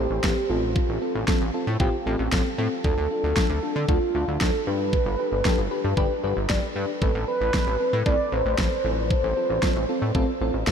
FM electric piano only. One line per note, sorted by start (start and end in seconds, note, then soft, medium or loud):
0.00 0.13 C4 medium
0.00 0.13 A4 medium
0.00 0.13 C5 medium
0.23 0.39 C4 medium
0.23 0.39 A4 medium
0.23 0.39 B4 medium
0.49 0.91 C4 medium
0.49 0.91 F4 medium
0.49 0.91 A4 medium
1.02 1.17 C4 medium
1.02 1.17 F4 medium
1.02 1.17 A4 medium
1.28 1.43 C4 medium
1.28 1.43 F4 medium
1.28 1.43 A4 medium
1.54 1.69 C4 medium
1.54 1.69 F4 medium
1.54 1.69 A4 medium
1.80 1.95 C4 loud
1.80 1.95 F4 loud
1.80 1.95 G4 loud
2.06 2.22 C4 medium
2.06 2.22 F4 medium
2.06 2.22 A4 medium
2.32 2.48 C4 medium
2.32 2.48 F4 medium
2.32 2.48 A4 medium
2.58 2.74 C4 medium
2.58 2.74 F4 medium
2.58 2.74 A4 medium
2.84 3.00 D4 medium
2.84 3.00 F4 medium
2.84 3.00 A4 loud
3.11 3.26 D4 medium
3.11 3.26 F4 medium
3.11 3.26 A4 medium
3.37 3.52 D4 medium
3.37 3.52 F4 medium
3.37 3.52 A4 medium
3.63 3.78 D4 medium
3.63 3.78 F4 medium
3.63 3.78 A4 medium
3.89 4.04 D4 medium
3.89 4.04 F4 medium
3.89 4.04 A4 loud
4.15 4.30 D4 medium
4.15 4.30 F4 medium
4.15 4.30 A4 medium
4.41 4.56 D4 medium
4.41 4.56 F4 medium
4.41 4.56 A4 medium
4.67 5.09 D4 medium
4.67 5.09 G4 medium
4.67 5.09 B4 medium
5.19 5.34 D4 medium
5.19 5.34 G4 medium
5.19 5.34 B4 medium
5.45 5.61 D4 medium
5.45 5.61 G4 medium
5.45 5.61 A4 medium
5.71 5.87 D4 medium
5.71 5.87 G4 medium
5.71 5.87 B4 medium
5.97 6.13 D4 loud
5.97 6.13 G4 loud
5.97 6.13 B4 loud
6.23 6.39 D4 medium
6.23 6.39 G4 medium
6.23 6.39 B4 loud
6.49 6.65 D4 medium
6.49 6.65 G4 medium
6.49 6.65 D5 medium
6.76 6.91 D4 medium
6.76 6.91 G4 medium
6.76 6.91 B4 medium
7.02 7.17 C4 medium
7.02 7.17 A4 medium
7.02 7.17 B4 loud
7.28 7.43 C4 medium
7.28 7.43 A4 medium
7.28 7.43 B4 medium
7.54 7.69 C4 medium
7.54 7.69 A4 medium
7.54 7.69 B4 medium
7.80 7.95 C4 medium
7.80 7.95 A4 medium
7.80 7.95 B4 medium
8.06 8.21 C4 medium
8.06 8.21 A4 medium
8.06 8.21 D5 loud
8.32 8.48 C4 medium
8.32 8.48 A4 medium
8.32 8.48 B4 medium
8.59 8.74 C4 medium
8.59 8.74 A4 medium
8.59 8.74 B4 medium
8.85 9.26 C4 medium
8.85 9.26 F4 medium
8.85 9.26 A4 medium
9.37 9.52 C4 medium
9.37 9.52 F4 medium
9.37 9.52 A4 medium
9.63 9.78 C4 medium
9.63 9.78 F4 medium
9.63 9.78 A4 medium
9.89 10.04 C4 medium
9.89 10.04 F4 medium
9.89 10.04 A4 medium
10.15 10.30 C4 loud
10.15 10.30 F4 loud
10.15 10.30 A4 loud
10.41 10.56 C4 medium
10.41 10.56 F4 medium
10.41 10.56 A4 loud
10.67 10.72 C4 medium
10.67 10.72 F4 medium
10.67 10.72 A4 loud